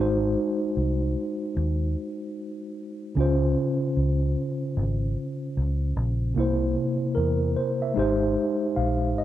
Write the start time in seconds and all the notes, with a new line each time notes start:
Already playing: G#1 G#3 D#4
0.00 F#4 C5
0.77 C2
1.57 D#2
3.15 C#2 C#3 C#4 F4
3.21 C5
3.97 C#2
4.77 G#1
5.57 C#2
5.97 A#1
6.34 C2 C3 A#3 E4
6.40 C5
7.15 E2 A#4
7.56 C5
7.82 E5
7.94 G#1 G#3 D#4 G4
7.99 C5
8.76 A#1 F5
9.17 G1 D#5